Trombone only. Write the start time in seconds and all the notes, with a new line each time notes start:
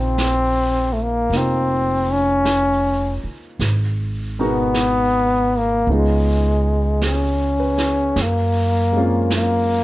Already playing: C4
0.93 A3
1.02 A#3
1.37 C4
2.13 C#4
4.43 B3
5.58 A#3
5.94 G#3
7.06 C#4
8.22 A#3
9.35 A#3